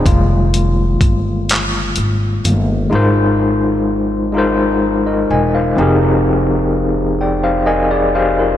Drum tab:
HH |xxxxxx|------|------|
CP |---x--|------|------|
BD |o-o---|------|------|